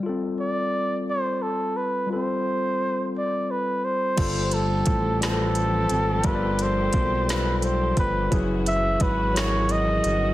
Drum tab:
CC |------|------|x-----|------|
HH |------|------|xxxxxx|xxxxxx|
SD |------|------|---o--|---o--|
BD |------|------|o-o---|o-o--o|

CC |------|
HH |xxxxxx|
SD |---o--|
BD |o-o---|